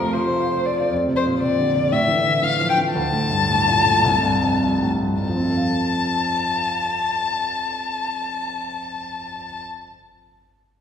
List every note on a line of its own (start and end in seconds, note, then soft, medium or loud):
0.00 0.91 F2 soft
0.00 0.94 C3 soft
0.00 0.66 F3 medium
0.00 0.02 A3 soft
0.00 0.22 A3 soft
0.00 0.14 F4 soft
0.00 0.66 A4 soft
0.00 0.14 A#4 soft
0.00 0.27 C5 soft
0.00 0.40 F5 soft
0.13 0.34 F4 soft
0.13 0.67 C5 soft
0.27 0.47 C5 soft
0.40 0.60 F5 soft
0.53 0.73 C5 soft
0.65 0.87 A4 soft
0.65 0.91 D5 soft
0.80 0.92 F4 soft
0.91 1.89 F2 soft
1.08 1.35 C3 soft
1.16 1.24 C5 medium
1.26 1.42 A#2 soft
1.40 1.69 C3 soft
1.40 1.94 D5 medium
1.58 1.75 D3 soft
1.75 1.92 C3 soft
1.92 2.92 A2 soft
1.92 2.44 E5 medium
2.08 2.36 E3 soft
2.26 2.43 D3 soft
2.43 2.70 E3 soft
2.43 2.69 F5 medium
2.60 2.77 F3 soft
2.69 2.77 G5 medium
2.78 2.95 E3 soft
2.94 4.00 D2 soft
2.94 4.87 A5 medium
3.13 3.41 A2 soft
3.30 3.48 G2 soft
3.49 3.78 A2 soft
3.68 3.85 A#2 soft
3.85 4.04 A2 soft
4.04 5.20 C2 medium
4.23 4.54 G2 soft
4.42 4.62 F2 soft
4.61 4.94 G2 soft
4.82 5.02 A2 soft
5.02 5.23 G2 soft
5.22 9.60 F2 soft
5.22 9.60 A5 soft
5.29 9.68 F3 soft
5.36 9.74 C4 soft
5.43 9.81 F4 soft
5.50 9.88 A4 soft
5.57 9.95 F5 soft